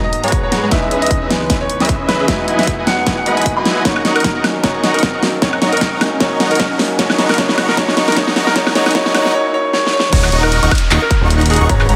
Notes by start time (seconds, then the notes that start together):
Already playing: G#2 D#3 F#3 A#3 B3 D#4 A#5, riser
0.04 D#5
0.13 closed hi-hat
0.23 G#3 G#4 B4 C#5 F#5 A#5, closed hi-hat
0.28 closed hi-hat
0.32 kick, closed hi-hat
0.43 C#5
0.52 snare, closed hi-hat
0.63 G#3 G#4 B4 F#5 A#5
0.69 C#2 C#3 E3 G#3 B3 C#4 G#4 B4 D#5 E5, kick, snare, closed hi-hat
0.73 D#4
0.91 C#4 G#4 B4 D#5 E5, closed hi-hat
1.02 D#5, closed hi-hat
1.06 closed hi-hat
1.11 kick, closed hi-hat
1.21 C#4 G#4 B4 D#5 E5
1.28 E3 G#3 B3, snare, closed hi-hat
1.50 C#4 G#4 B4 D#5 E5, kick, snare, closed hi-hat
1.61 C#5
1.70 closed hi-hat
1.80 C#4 G#4 B4 D#5 E5, snare, closed hi-hat
1.85 closed hi-hat
1.89 kick, closed hi-hat
2.08 B4, snare, closed hi-hat
2.20 C#4 G#4 B4 D#5 E5
2.26 E2 F#3 G#3 B3 E4 G#4 B4 E5 G#5, kick, snare, closed hi-hat
2.30 D#4
2.48 E4 B4 D#5 F#5 G#5, closed hi-hat
2.59 E5, snare, closed hi-hat
2.63 closed hi-hat
2.67 kick, closed hi-hat
2.79 E4 B4 D#5 F#5 G#5
2.86 F#3 G#3 B3 D#4 F#5, snare, closed hi-hat
3.07 E4 B4 D#5 F#5 G#5, kick, snare, closed hi-hat
3.17 F#5
3.25 F#3 G#3 B3 D#4 E4 B4 D#5 F#5 B5, closed hi-hat
3.37 G#5, closed hi-hat
3.42 closed hi-hat
3.46 kick, closed hi-hat
3.56 F#3 G#3 B3 E4 F#4 B4 D#5 F#5 G#5 B5
3.65 snare, closed hi-hat
3.83 D#2 D#3 F#3 A#3 C#4 D#4 A#4 C#5 D#5, kick, snare, closed hi-hat
3.87 D#4
3.96 high woodblock
4.05 D#4 D#5 F#5 A#5 C#6, snare, closed hi-hat
4.16 A#4, closed hi-hat, high woodblock
4.20 closed hi-hat
4.24 kick, snare, closed hi-hat
4.35 D#4 D#5 F#5 A#5 C#6
4.42 F#3 A#3 C#4, snare, closed hi-hat, high woodblock
4.46 D#4
4.62 F#3 A#3 C#4 D#4 C#5 D#5 F#5 A#5 C#6, kick, snare, closed hi-hat
4.66 D#4
4.83 D#4 D#5 F#5 A#5 C#6, snare, closed hi-hat
4.94 A#4, closed hi-hat
4.99 closed hi-hat
5.03 kick, snare, closed hi-hat
5.14 D#4 D#5 F#5 A#5 C#6
5.21 F#3 A#3 C#4, snare, open hi-hat
5.25 D#4
5.40 G#2 D#3 F#3 A#3 C#4 D#4 A#4 C#5 D#5 F#5 A#5 C#6, kick, snare, closed hi-hat
5.53 high woodblock
5.62 D#4 D#5 F#5 A#5 C#6, snare, closed hi-hat
5.72 A#4, closed hi-hat
5.77 closed hi-hat
5.81 kick, snare, closed hi-hat
5.92 D#4 D#5 F#5 A#5 C#6
5.99 F#3 A#3 C#4 D#4, snare, closed hi-hat, high woodblock
6.18 F#3 A#3 C#4 D#4 C#5 D#5 F#5 A#5 C#6, kick, snare, closed hi-hat
6.40 D#4 D#5 F#5 A#5 C#6, snare, closed hi-hat
6.51 A#4, closed hi-hat
6.55 closed hi-hat
6.60 kick, snare, closed hi-hat
6.71 D#4 D#5 F#5 A#5 C#6
6.77 F#3 A#3 C#4 D#4, snare, open hi-hat
6.97 C#2 C#3 E3 F#3 A#3 C#4 D#4 C#5 D#5 F#5 A#5 B5 C#6, kick, snare, closed hi-hat
7.01 D#4
7.10 snare, high woodblock
7.18 D#4 D#5 F#5 A#5 C#6, snare, closed hi-hat
7.29 A#4, snare, closed hi-hat, high woodblock
7.34 F#3 A#3, closed hi-hat
7.38 C#4 D#4 C#5 F#5, kick, snare, closed hi-hat
7.49 snare
7.58 D#4 D#5 F#5 A#5 C#6, snare, closed hi-hat, high woodblock
7.69 A#4, snare
7.75 F#3 A#3 C#4 D#4 C#5 D#5 C#6, kick, snare, closed hi-hat
7.79 D#4
7.88 snare
7.97 D#4 D#5 F#5 A#5 C#6, snare, closed hi-hat
8.08 A#4, snare, closed hi-hat
8.12 F#3 A#3, closed hi-hat
8.17 C#4 D#4 C#5 D#5, kick, snare, closed hi-hat
8.27 snare
8.36 D#4 D#5 F#5 A#5 C#6, snare, open hi-hat
8.47 A#4, snare
8.54 E2 B2 F#3 A#3 C#4 D#4 G#4 C#5 D#5 F#5 C#6, kick, snare, closed hi-hat
8.67 snare, high woodblock
8.74 F#3 A#3 C#4 D#4 C#5 D#5 F#5 A#5 C#6, snare, closed hi-hat
8.86 snare, closed hi-hat, high woodblock
8.91 F#3 A#3, closed hi-hat
8.95 C#4 D#4 C#5 D#5 F#5 A#5 C#6, kick, snare, closed hi-hat
9.06 snare
9.13 F#3 A#3 C#4 D#4 C#5 D#5 F#5 A#5 C#6, snare, closed hi-hat, high woodblock
9.25 snare
9.34 C#5
9.54 C#5
9.73 C#5, snare
9.87 snare
9.93 C#5
10.00 snare
10.13 D#1 C#4 D#4 C#5 D#5 F#5 A#5 C#6, kick, closed hi-hat, crash, downlifter
10.23 D#4, clap, high woodblock
10.32 D#1 D#4 F#4 D#5 F#5 A#5 C#6, closed hi-hat
10.43 A#4, high woodblock
10.52 F#4, closed hi-hat
10.63 D#1 D#4 D#5 F#5 A#5 C#6, closed hi-hat
10.71 C#4, kick, closed hi-hat, high woodblock
10.75 closed hi-hat
10.78 closed hi-hat
10.82 D#4
10.91 D#1 D#4 F#4 D#5 F#5 A#5 C#6, clap, closed hi-hat
11.02 F#4 A#4
11.11 F#4, kick, closed hi-hat
11.21 D#1 D#4 D#5 F#5 A#5 C#6
11.30 C#4, closed hi-hat
11.41 D#4, closed hi-hat
11.46 closed hi-hat
11.50 F#4 G#4, closed hi-hat, open hi-hat
11.56 closed hi-hat
11.61 D#1 D#4 A#4 D#5 F#5 A#5 C#6
11.69 G#1 G#3 G#4 B4 C#5 A#5, kick, closed hi-hat
11.80 F#4, clap, high woodblock
11.89 G#1 G#3 G#4 B4 F#5 A#5, closed hi-hat